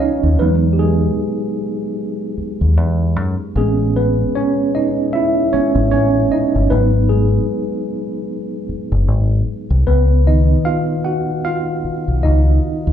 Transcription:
0.00 0.41 C#4 medium
0.00 0.02 D#4 medium
0.00 0.37 D#4 medium
0.00 0.40 F4 medium
0.00 0.41 C#5 loud
0.00 0.40 D#5 loud
0.00 0.40 F5 loud
0.23 0.37 D#2 medium
0.39 1.06 E2 loud
0.39 0.94 F#3 medium
0.39 0.80 G#3 medium
0.39 0.56 B3 medium
0.39 0.95 D#4 medium
0.39 0.54 B4 medium
0.73 0.79 G4 medium
0.79 2.34 G#3 medium
0.79 2.33 G#4 medium
2.38 muted fingered electric bass stroke soft
2.61 2.77 D#2 medium
2.77 3.16 E2 medium
3.16 3.35 F#2 loud
3.56 4.22 A1 loud
3.56 3.93 G#3 medium
3.56 3.96 B3 soft
3.56 4.36 C#4 medium
3.56 3.97 G#4 medium
3.96 4.32 B3 medium
3.96 4.36 B4 medium
4.35 4.54 C#4 medium
4.35 4.53 C#5 loud
4.75 5.11 D#4 medium
4.75 5.14 D#5 medium
5.13 5.51 E4 medium
5.13 5.53 E5 loud
5.53 5.88 G#3 medium
5.53 5.89 B3 soft
5.53 5.90 C#4 medium
5.53 5.89 C#5 loud
5.53 muted fingered electric bass stroke soft
5.75 5.89 G#1 loud
5.91 6.25 A1 medium
5.91 6.29 C#4 medium
5.91 6.32 C#5 loud
6.32 6.69 D#4 medium
6.32 6.72 D#5 loud
6.55 6.69 G1 medium
6.70 7.38 G#1 loud
6.70 7.85 F#3 medium
6.70 7.08 B3 medium
6.70 7.86 D#4 medium
6.70 7.11 B4 loud
7.09 8.64 G#3 medium
7.09 8.63 G#4 medium
8.69 muted fingered electric bass stroke soft
8.92 9.08 F#1 medium
9.08 9.41 G#1 medium
9.70 9.84 C2 loud
9.87 10.54 C#2 medium
9.87 10.23 B3 medium
9.87 10.23 B4 medium
10.27 12.93 D#3 medium
10.27 12.93 B3 soft
10.27 10.45 D#4 medium
10.27 10.45 D#5 medium
10.65 11.02 F4 medium
10.65 11.06 F5 loud
11.05 11.42 F#4 medium
11.05 11.45 F#5 medium
11.45 12.20 F4 medium
11.45 12.26 F5 loud
11.85 muted fingered electric bass stroke soft
12.08 12.21 B1 medium
12.23 12.58 C#2 medium
12.23 12.93 D#4 medium
12.23 12.93 D#5 loud
12.87 12.93 D#2 loud

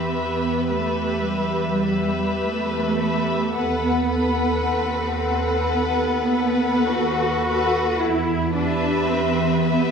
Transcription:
0.00 0.13 C4 soft
0.00 0.67 G4 soft
0.00 0.67 B4 soft
0.00 0.68 E5 soft
0.13 1.12 E2 soft
0.13 0.70 B3 soft
0.69 1.25 A3 soft
0.69 1.79 G4 soft
0.69 1.79 B4 soft
0.69 1.80 E5 soft
1.25 2.26 E2 soft
1.25 2.39 G3 medium
1.82 2.95 G4 soft
1.82 2.95 B4 soft
1.82 2.95 E5 soft
2.39 3.40 E2 soft
2.39 3.54 A3 medium
2.96 3.53 G4 soft
2.96 3.53 B4 soft
2.96 3.52 E5 soft
3.53 4.52 D#2 medium
3.53 4.64 B3 medium
3.53 4.08 A4 soft
3.53 4.08 B4 soft
3.53 4.08 F#5 soft
4.09 5.17 A4 soft
4.09 5.17 B4 soft
4.09 5.17 F#5 soft
4.64 5.61 D#2 medium
4.64 5.72 C4 medium
5.19 6.30 A4 soft
5.19 6.30 B4 soft
5.19 6.30 F#5 soft
5.74 6.78 D#2 medium
5.74 6.91 B3 medium
6.32 7.45 A4 soft
6.32 7.45 B4 soft
6.32 7.45 F#5 soft
6.91 7.88 D#2 medium
6.91 8.00 F#4 medium
7.47 8.00 A4 soft
7.47 7.99 B4 soft
7.47 7.99 F#5 soft
8.00 8.95 E2 medium
8.00 8.54 E4 medium
8.53 9.07 D4 medium
8.53 9.62 G4 soft
8.53 9.61 B4 soft
8.53 9.62 E5 soft
9.07 9.91 E2 medium
9.07 9.63 C4 medium
9.63 9.91 B3 medium
9.63 9.91 G4 soft
9.63 9.91 B4 soft
9.63 9.91 E5 soft

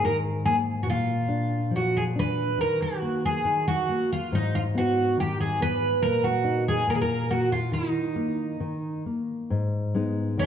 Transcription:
0.00 0.84 G#2 medium
0.00 0.44 D#3 medium
0.05 0.16 A#4 medium
0.45 0.86 A#3 soft
0.45 0.55 G#4 medium
0.83 2.55 A#2 medium
0.83 0.89 F#4 medium
0.90 1.75 F4 medium
1.28 1.71 D4 soft
1.71 2.14 F3 soft
1.76 1.97 F#4 medium
1.97 2.02 G#4 medium
2.16 2.58 D4 soft
2.16 2.60 B4 medium
2.58 3.44 D#3 medium
2.58 2.80 A#4 medium
2.82 3.25 F#4 medium
3.02 3.44 A#3 soft
3.25 3.67 G#4 medium
3.45 3.88 D#3 soft
3.68 4.12 F#4 medium
3.89 4.31 A#3 soft
4.12 4.34 F4 medium
4.32 5.98 G#2 medium
4.32 4.54 D#4 medium
4.55 4.61 F4 medium
4.75 5.16 B3 medium
4.75 5.20 F#4 medium
5.17 5.59 D#3 soft
5.17 5.40 G4 medium
5.41 5.59 G#4 medium
5.60 6.01 B3 soft
5.60 6.02 B4 loud
6.02 6.84 A#2 medium
6.02 6.24 A#4 loud
6.24 6.63 F#4 medium
6.44 6.86 D#4 medium
6.68 6.89 G#4 medium
6.87 7.70 A#2 medium
6.87 6.95 A#4 medium
6.95 7.01 G#4 medium
7.01 7.31 A#4 medium
7.30 7.72 A#3 medium
7.30 7.52 F#4 medium
7.52 7.73 F4 medium
7.72 8.59 D#3 medium
7.72 9.02 D#4 medium
8.16 8.59 A#3 soft
8.60 9.04 D#3 soft
9.06 9.49 A#3 soft
9.50 10.35 G#2 medium
9.94 10.46 G#3 soft
9.94 10.46 B3 soft
9.94 10.46 D#4 medium
10.38 10.46 D#3 medium
10.38 10.46 D#4 medium

